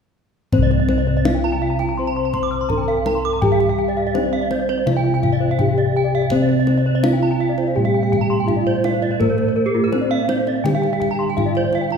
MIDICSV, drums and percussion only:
0, 0, Header, 1, 2, 480
1, 0, Start_track
1, 0, Tempo, 722892
1, 353, Time_signature, 4, 2, 24, 8
1, 7951, End_track
2, 0, Start_track
2, 0, Title_t, "Kendang"
2, 348, Note_on_c, 9, 64, 42
2, 415, Note_off_c, 9, 64, 0
2, 472, Note_on_c, 9, 62, 10
2, 539, Note_off_c, 9, 62, 0
2, 588, Note_on_c, 9, 63, 22
2, 654, Note_off_c, 9, 63, 0
2, 832, Note_on_c, 9, 62, 11
2, 832, Note_on_c, 9, 63, 31
2, 899, Note_off_c, 9, 62, 0
2, 899, Note_off_c, 9, 63, 0
2, 1190, Note_on_c, 9, 62, 12
2, 1256, Note_off_c, 9, 62, 0
2, 1550, Note_on_c, 9, 64, 29
2, 1617, Note_off_c, 9, 64, 0
2, 1791, Note_on_c, 9, 64, 28
2, 1857, Note_off_c, 9, 64, 0
2, 2031, Note_on_c, 9, 63, 29
2, 2097, Note_off_c, 9, 63, 0
2, 2271, Note_on_c, 9, 64, 34
2, 2338, Note_off_c, 9, 64, 0
2, 2393, Note_on_c, 9, 62, 11
2, 2459, Note_off_c, 9, 62, 0
2, 2755, Note_on_c, 9, 62, 11
2, 2755, Note_on_c, 9, 63, 30
2, 2822, Note_off_c, 9, 62, 0
2, 2822, Note_off_c, 9, 63, 0
2, 2993, Note_on_c, 9, 63, 23
2, 3059, Note_off_c, 9, 63, 0
2, 3114, Note_on_c, 9, 62, 11
2, 3180, Note_off_c, 9, 62, 0
2, 3233, Note_on_c, 9, 63, 29
2, 3300, Note_off_c, 9, 63, 0
2, 3475, Note_on_c, 9, 64, 29
2, 3541, Note_off_c, 9, 64, 0
2, 3711, Note_on_c, 9, 64, 29
2, 3778, Note_off_c, 9, 64, 0
2, 4184, Note_on_c, 9, 64, 34
2, 4251, Note_off_c, 9, 64, 0
2, 4308, Note_on_c, 9, 62, 8
2, 4374, Note_off_c, 9, 62, 0
2, 4429, Note_on_c, 9, 63, 19
2, 4495, Note_off_c, 9, 63, 0
2, 4672, Note_on_c, 9, 62, 11
2, 4672, Note_on_c, 9, 63, 30
2, 4739, Note_off_c, 9, 62, 0
2, 4739, Note_off_c, 9, 63, 0
2, 5032, Note_on_c, 9, 62, 10
2, 5098, Note_off_c, 9, 62, 0
2, 5398, Note_on_c, 9, 64, 27
2, 5465, Note_off_c, 9, 64, 0
2, 5633, Note_on_c, 9, 64, 22
2, 5700, Note_off_c, 9, 64, 0
2, 5871, Note_on_c, 9, 63, 27
2, 5937, Note_off_c, 9, 63, 0
2, 6112, Note_on_c, 9, 64, 28
2, 6179, Note_off_c, 9, 64, 0
2, 6228, Note_on_c, 9, 62, 9
2, 6294, Note_off_c, 9, 62, 0
2, 6590, Note_on_c, 9, 62, 10
2, 6590, Note_on_c, 9, 63, 24
2, 6657, Note_off_c, 9, 62, 0
2, 6657, Note_off_c, 9, 63, 0
2, 6832, Note_on_c, 9, 63, 21
2, 6898, Note_off_c, 9, 63, 0
2, 6952, Note_on_c, 9, 62, 11
2, 7019, Note_off_c, 9, 62, 0
2, 7075, Note_on_c, 9, 63, 24
2, 7142, Note_off_c, 9, 63, 0
2, 7194, Note_on_c, 9, 62, 12
2, 7260, Note_off_c, 9, 62, 0
2, 7314, Note_on_c, 9, 62, 11
2, 7314, Note_on_c, 9, 64, 26
2, 7381, Note_off_c, 9, 62, 0
2, 7381, Note_off_c, 9, 64, 0
2, 7554, Note_on_c, 9, 62, 9
2, 7554, Note_on_c, 9, 64, 28
2, 7621, Note_off_c, 9, 62, 0
2, 7621, Note_off_c, 9, 64, 0
2, 7670, Note_on_c, 9, 62, 12
2, 7736, Note_off_c, 9, 62, 0
2, 7786, Note_on_c, 9, 62, 10
2, 7853, Note_off_c, 9, 62, 0
2, 7905, Note_on_c, 9, 62, 8
2, 7951, Note_off_c, 9, 62, 0
2, 7951, End_track
0, 0, End_of_file